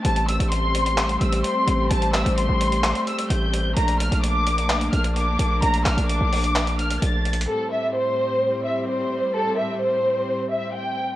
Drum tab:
HH |x--x--x--x--x-----x--x--x--x--x--x--x-----x-----|x--x--x--x--x-----x--x--x--x--x--x--x-----x-----|x--x--x--x--x-----x--x--x--x--x--x--x-----x-----|x--x--x--x--x-----o--x--x--x--x--x--x-----x-x-x-|
CP |------------------------x-----------------------|------x-----------------x-----------------------|------------------------x-----------------------|------x-----------------x-----------------------|

HH |------------------------------------------------|------------------------------------------------|
CP |------------------------------------------------|------------------------------------------------|